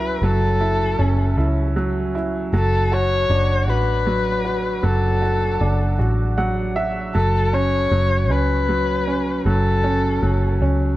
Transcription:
Already playing: C#2 F#3 C#4 E4 B4
0.22 F#1 F#3 A4
0.61 E4
0.99 F#1 C#4
1.37 C#2 E4
1.76 F#3
2.15 E4
2.53 F#1 F#3 A4
2.92 F#4 C#5
3.29 F#1 D4
3.68 A1 F#4 B4
4.07 F#3
4.45 F#4
4.83 F#1 F#3 A4
5.22 F#4
5.61 F#1 D4
5.99 A1 F#4
6.38 F#3 F#5
6.76 F#4 E5
7.15 F#1 F#3 A4
7.53 C#4 C#5
7.91 F#1 F#3
8.30 C#2 C#4 B4
8.69 F#3
9.07 C#4
9.45 F#1 F#3 A4
9.84 C#4
10.23 F#1 F#3
10.61 C#2 C#4

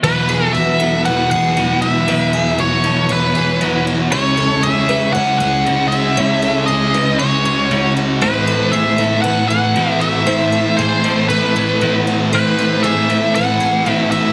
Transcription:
0.03 E2 B2 E3 F#3 B3 E4 B4
0.29 G#4
0.45 A4
0.53 E2 B2 F#4 E5
0.58 E3
0.80 E3 F#3 B3 E4 A4
1.05 E2 B2 E3 B4 F#5
1.31 B2 E3 G#4 F#5
1.57 E2 B2 E3 F#3 B3 E4 F#4
1.82 F#4 E5
2.07 E2 B2 E3 F#3 B3 E4 B4 C#5
2.12 E3
2.33 G#4
2.58 E2 B2 E3 F#4 C#5
2.84 E3 F#3 B3 E4 A4
3.09 E2 B2 E3 B4
3.35 B2 E3 G#4
3.61 E2 B2 E3 F#3 B3 E4 F#4
3.87 F#4
4.11 C#2 C#3 G#3 C#4 E4 G#4 C#5
4.16 C#4
4.37 A4
4.63 C#3 G#3 G#4 E5
4.67 C#4
4.89 C#3 G#3 C#4 E4 B4
5.13 C#3 G#3 C#5 F#5
5.18 C#4
5.38 C#4 G#4 F#5
5.44 G#3
5.66 C#3 G#3 C#4 E4 F#4
5.70 C#4
5.88 E5
5.92 F#4
6.17 C#3 G#3 C#4 E4 F#4 C#5
6.42 A4
6.66 C#3 G#4 D#5
6.70 G#3 C#4
6.94 C#3 G#3 C#4 E4 B4
7.18 C#3 G#3 C#5
7.23 C#4
7.45 G#3 C#4 G#4
7.70 C#3 G#3 C#4 E4 F#4
7.97 F#4
8.22 A2 E3 A3 C4 E4 A4 B4 C5
8.26 A3
8.47 A4
8.72 A2 E3 G#4 E5
8.76 A3
8.98 A2 E3 A3 C4 E4 A4
9.22 A2 B4 F#5
9.26 E3 A3
9.49 A3 G#4 F#5
9.53 E3
9.75 A2 E3 A3 C4 E4 F#4
10.01 F#4 E5
10.26 A2 E3 A3 C4 E4 C5
10.52 A4
10.77 A2 E3 G#4 C5
10.82 A3
11.04 A2 E3 A3 C4 E4 A4
11.28 A2 E3 A3 B4
11.56 E3 A3 G#4
11.81 A2 E3 A3 C4 E4 F#4
12.07 F#4
12.32 A2 E3 A3 C4 E4 B4 C5
12.59 A4
12.83 A2 E3 G#4 E5
12.87 A3
13.08 A2 E3 A3 C4 E4 A4
13.35 A2 E3 A3 B4 F#5
13.60 E3 A3 G#4
13.85 A2 E3 A3 C4 E4 F#4
13.93 E5
14.11 F#4 E5

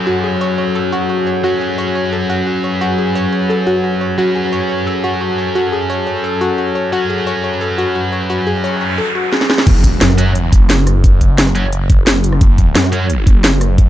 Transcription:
Already playing: F#3 C#4 F#4 G#4 A4, downlifter
0.07 F#4
0.24 G#4
0.41 C#5
0.58 C#5
0.75 A4
0.92 F#4
1.10 F#4
1.27 C#5
1.44 F#3 C#4 F#4 B4
1.61 G#4
1.78 C#5
1.95 C#5
2.12 A4
2.30 F#4
2.47 F#4
2.64 C#5
2.81 F#4
2.98 G#4
3.15 C#5
3.33 C#5
3.50 A4
3.67 F#4
3.84 F#4
4.01 C#5
4.18 F#3 C#4 F#4 A4
4.35 G#4
4.52 C#5
4.70 C#5
4.87 A4
5.04 F#4
5.21 F#4
5.38 C#5
5.55 F#4
5.72 G#4
5.90 C#5
6.07 C#5
6.24 A4
6.41 F#4
6.58 F#4
6.75 C#5
6.92 F#3 C#4 F#4 B4
7.10 G#4
7.27 C#5
7.44 C#5
7.61 A4
7.78 F#4
7.95 F#4
8.12 C#5
8.30 F#4, noise sweep
8.47 G#4
8.64 C#5
8.81 C#5
8.98 A4
9.15 F#4
9.32 G#4, snare
9.41 snare
9.50 G#4, snare
9.58 snare
9.67 F#1, kick, closed hi-hat, crash, impact
9.84 kick, closed hi-hat
10.01 F#2, snare, closed hi-hat
10.10 cross-stick
10.18 F#3 C#4 F#4, closed hi-hat
10.35 closed hi-hat
10.53 F#1, kick, closed hi-hat
10.70 snare, closed hi-hat
10.87 cross-stick, closed hi-hat
11.04 kick, closed hi-hat
11.21 kick, closed hi-hat
11.38 snare, closed hi-hat
11.47 cross-stick
11.55 F#3 C#4 F#4, closed hi-hat
11.73 closed hi-hat
11.90 F#1, kick, closed hi-hat
12.07 snare, closed hi-hat
12.24 closed hi-hat
12.33 cross-stick
12.41 F#1, kick, closed hi-hat
12.58 kick, closed hi-hat
12.75 F#2, snare, closed hi-hat
12.84 cross-stick
12.92 F#3 C#4 F#4, closed hi-hat
13.10 closed hi-hat
13.27 F#1, kick, closed hi-hat
13.44 snare, closed hi-hat
13.61 cross-stick, closed hi-hat
13.78 kick, closed hi-hat

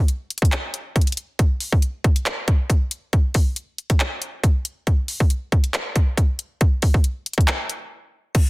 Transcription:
0.08 closed hi-hat
0.30 closed hi-hat
0.38 closed hi-hat
0.42 kick, closed hi-hat
0.52 clap, closed hi-hat
0.74 closed hi-hat
0.96 kick, closed hi-hat
1.01 closed hi-hat
1.07 closed hi-hat
1.12 closed hi-hat
1.17 closed hi-hat
1.39 kick, closed hi-hat
1.60 open hi-hat
1.72 kick
1.82 closed hi-hat
2.04 kick, closed hi-hat
2.16 closed hi-hat
2.26 clap, closed hi-hat
2.48 kick, closed hi-hat
2.70 kick, closed hi-hat
2.91 closed hi-hat
3.13 kick, closed hi-hat
3.34 kick, open hi-hat
3.56 closed hi-hat
3.78 closed hi-hat
3.90 kick, closed hi-hat
4.00 clap, closed hi-hat
4.22 closed hi-hat
4.44 kick, closed hi-hat
4.65 closed hi-hat
4.87 kick, closed hi-hat
5.08 open hi-hat
5.20 kick
5.30 closed hi-hat
5.52 kick, closed hi-hat
5.64 closed hi-hat
5.74 clap, closed hi-hat
5.96 kick, closed hi-hat
6.17 kick, closed hi-hat
6.39 closed hi-hat
6.61 kick, closed hi-hat
6.82 kick, open hi-hat
6.94 kick
7.04 closed hi-hat
7.26 closed hi-hat
7.33 closed hi-hat
7.38 kick, closed hi-hat
7.48 clap, closed hi-hat
7.69 closed hi-hat
8.35 kick, closed hi-hat, crash

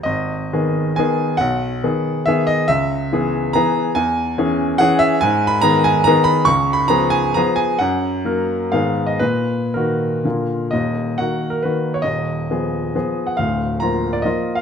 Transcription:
0.03 G#1 D#5
0.53 D#3 B3 G#4
0.96 D#3 B3 G#4 G#5
1.37 B1 F#5
1.83 D#3 B3 G#4
2.26 D#3 B3 G#4 E5
2.47 D#5
2.68 C#2 E5
3.12 E3 B3 G#4
3.53 E3 B3 G#4 A#5
3.95 E2 G#5
4.38 E3 C#4 G#4
4.78 E3 C#4 G#4 F#5
4.99 E5
5.21 G#2 G#5
5.47 B5
5.61 D#3 B3 G#4 A#5
5.84 G#5
6.04 D#3 B3 G#4 A#5
6.24 B5
6.45 C#2 C#6
6.73 B5
6.88 F3 B3 G#4 A#5
7.10 G#5
7.34 F3 B3 G#4 A#5
7.56 G#5
7.79 F#2 F#5
8.25 F#3 A#3 A#4
8.72 G#2 D#3 B3 G#4 F5
9.06 D#5
9.19 A#2 B4
9.74 D#3 A#3 F#4 A#4
10.25 A#2 D3 A#3 F4
10.71 D#1 D#2 D#5
11.18 D#3 A#3 F#4 F#5
11.50 A#4
11.63 D#3 A#3 F#4 B4
11.94 C#5
12.02 D#1 D#2 D#5
12.50 F3 B3 G#4
12.95 F3 B3 G#4
13.27 F#5
13.37 D1 D2 F5
13.80 F3 A#3 F4 A#5
14.13 D5
14.22 F3 A#3 F4 D#5
14.55 F5

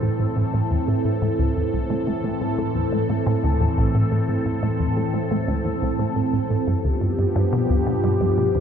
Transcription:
Already playing: A2 E3 C4 A4
0.03 A2
0.20 A2
0.37 A2
0.54 A2
0.71 E2
0.88 A2
1.05 A2
1.22 A2
1.39 D2
1.56 E2
1.73 C2
1.90 A2
2.07 A2
2.24 A2
2.41 A2
2.59 A2
2.75 E2
2.93 A2
3.10 A2
3.27 A2
3.44 D2
3.61 E2
3.78 C2
3.95 A2
4.12 A2
4.29 A2
4.46 A2
4.63 A2
4.80 E2
4.97 A2
5.14 A2
5.31 A2
5.48 D2
5.65 E2
5.82 C2
5.99 A2
6.16 A2
6.33 A2
6.50 A2
6.67 G2 F3 B3 G4
6.84 D2
7.01 G2
7.19 G2
7.36 G2
7.53 B2
7.70 D2
7.87 B2
8.04 G2
8.21 G2
8.38 B2
8.55 D2

